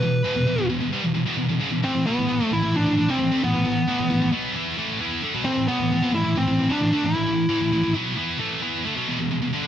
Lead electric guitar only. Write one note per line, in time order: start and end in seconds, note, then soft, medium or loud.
0.00 0.66 B4 loud
1.84 2.06 C4 loud
2.07 2.53 B3 loud
2.53 2.75 E4 loud
2.76 3.10 D4 medium
3.10 3.44 C4 medium
3.44 4.30 B3 medium
5.45 5.66 C4 loud
5.68 6.10 B3 loud
6.15 6.37 E4 loud
6.38 6.71 C4 loud
6.72 7.06 D4 loud
7.06 7.92 E4 medium